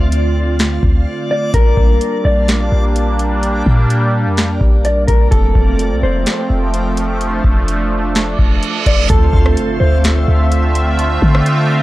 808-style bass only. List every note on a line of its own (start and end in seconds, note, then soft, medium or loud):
0.00 0.79 D2 loud
0.83 1.06 D2 loud
1.54 1.77 A#1 loud
1.77 2.00 A#1 loud
2.25 2.70 A#1 loud
2.72 3.63 A#1 loud
3.66 4.27 A#2 loud
4.26 4.59 F2 loud
4.61 5.06 A#1 loud
5.08 5.31 A#1 loud
5.32 5.55 F1 loud
5.55 5.93 F1 loud
5.91 6.02 C2 loud
6.03 6.25 F1 loud
6.50 7.41 F1 loud
7.44 8.35 F1 loud
8.39 8.62 F1 loud
8.86 9.09 F1 loud
9.10 9.33 D2 loud
9.33 9.56 D2 loud
9.81 10.26 D2 loud
10.28 11.19 D2 loud
11.22 11.83 D3 loud